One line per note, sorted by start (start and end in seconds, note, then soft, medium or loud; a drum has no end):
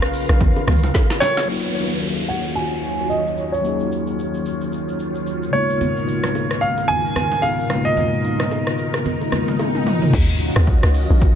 0.00 0.25 B1 loud
0.00 1.45 C#3 medium
0.00 1.44 C#4 medium
0.00 1.45 F4 medium
0.00 1.45 A#4 medium
0.00 1.45 B4 medium
0.00 1.46 F5 loud
0.00 cross-stick medium
0.00 shaker medium
0.14 open hi-hat medium
0.14 shaker loud
0.29 0.52 A#1 medium
0.29 cross-stick medium
0.29 shaker medium
0.40 kick loud
0.40 low conga medium
0.40 shaker medium
0.56 high bongo medium
0.56 shaker medium
0.67 0.91 C#2 loud
0.67 cross-stick loud
0.67 mid tom medium
0.67 open hi-hat medium
0.67 low conga medium
0.67 shaker medium
0.83 low bongo medium
0.83 shaker medium
0.94 kick loud
0.94 snare medium
0.94 high bongo medium
0.94 shaker medium
1.10 snare medium
1.10 shaker medium
1.20 2.32 C#5 loud
1.20 snare loud
1.20 open hi-hat medium
1.20 low bongo medium
1.20 shaker medium
1.37 snare loud
1.37 shaker medium
1.45 5.50 D#2 medium
1.45 10.09 D#3 medium
1.45 3.59 F#3 medium
1.45 5.50 F#3 medium
1.45 3.60 A#3 medium
1.45 3.61 C#4 medium
1.45 10.09 F4 medium
1.45 5.50 C#5 medium
1.45 downlifter medium
1.45 shaker medium
1.51 3.62 D#4 medium
1.51 3.63 F4 medium
1.64 shaker soft
1.76 shaker medium
1.91 shaker soft
2.03 shaker medium
2.18 shaker medium
2.29 2.54 F#5 medium
2.29 shaker medium
2.45 shaker soft
2.55 3.12 G#5 loud
2.55 shaker medium
2.73 shaker medium
2.83 shaker medium
2.99 shaker soft
3.10 3.54 D#5 medium
3.10 shaker medium
3.27 shaker medium
3.38 shaker medium
3.52 4.57 C#5 medium
3.52 shaker medium
3.61 5.48 F#3 medium
3.61 5.49 A#3 medium
3.61 5.50 C#4 medium
3.61 shaker medium
3.67 5.51 D#4 medium
3.67 5.52 G#4 medium
3.80 shaker soft
3.92 shaker medium
4.07 shaker soft
4.19 shaker medium
4.34 shaker medium
4.46 shaker medium
4.61 shaker medium
4.72 shaker medium
4.89 shaker medium
4.99 shaker medium
5.15 shaker soft
5.27 shaker medium
5.43 shaker medium
5.50 10.09 C#2 medium
5.50 10.09 G#2 medium
5.50 10.09 B2 medium
5.50 7.64 C#3 medium
5.50 7.65 G#3 medium
5.50 7.66 A#3 medium
5.50 10.09 A#4 medium
5.50 6.65 C#5 loud
5.50 shaker medium
5.55 7.67 B3 medium
5.55 7.67 D#4 medium
5.55 7.68 F4 medium
5.70 shaker medium
5.81 swell medium
5.81 low conga medium
5.81 shaker medium
5.96 shaker soft
6.08 shaker medium
6.23 cross-stick medium
6.23 low bongo medium
6.23 shaker medium
6.35 high bongo medium
6.35 shaker medium
6.51 cross-stick medium
6.51 shaker medium
6.61 6.89 F5 medium
6.61 shaker medium
6.77 high bongo medium
6.77 shaker soft
6.88 7.44 G#5 loud
6.88 low conga medium
6.88 shaker medium
7.05 shaker medium
7.16 cross-stick medium
7.16 low conga medium
7.16 shaker medium
7.31 low bongo medium
7.31 shaker soft
7.42 7.87 F5 medium
7.42 high bongo medium
7.42 shaker medium
7.59 shaker medium
7.67 9.27 C#3 medium
7.67 9.28 G#3 medium
7.67 9.29 A#3 medium
7.67 cross-stick medium
7.67 low bongo medium
7.67 shaker medium
7.71 9.30 B3 medium
7.71 9.30 D#4 medium
7.71 9.31 F4 medium
7.85 8.89 D#5 medium
7.85 shaker medium
7.97 low conga medium
7.97 shaker medium
8.13 shaker soft
8.24 shaker medium
8.40 cross-stick medium
8.40 low bongo medium
8.40 shaker medium
8.51 high bongo medium
8.51 shaker medium
8.67 cross-stick medium
8.67 shaker medium
8.78 shaker loud
8.94 cross-stick medium
8.94 high bongo medium
8.94 shaker soft
9.05 low conga medium
9.05 shaker medium
9.21 high bongo soft
9.21 shaker medium
9.31 10.13 C#3 medium
9.31 10.13 G#3 medium
9.31 10.13 A#3 medium
9.31 10.14 B3 medium
9.31 10.14 D#4 soft
9.31 10.14 F4 medium
9.31 cross-stick medium
9.31 low conga medium
9.31 shaker medium
9.47 low bongo medium
9.47 shaker soft
9.59 high tom medium
9.59 high bongo medium
9.59 shaker medium
9.75 mid tom medium
9.75 shaker medium
9.86 mid tom medium
9.86 low bongo medium
9.86 shaker medium
10.02 floor tom medium
10.02 shaker medium
10.13 10.50 D#2 loud
10.13 11.35 D#3 medium
10.13 11.35 C#4 medium
10.13 11.35 F4 medium
10.13 11.35 F#4 medium
10.13 11.35 D#5 medium
10.13 kick loud
10.13 crash loud
10.13 shaker medium
10.29 shaker medium
10.41 open hi-hat medium
10.41 shaker medium
10.56 10.79 D#2 loud
10.56 cross-stick loud
10.56 shaker medium
10.67 kick loud
10.67 shaker medium
10.83 11.06 C#2 medium
10.83 cross-stick medium
10.83 shaker medium
10.94 open hi-hat medium
10.94 shaker loud
11.10 11.33 A#1 loud
11.10 shaker medium
11.21 kick loud
11.21 shaker medium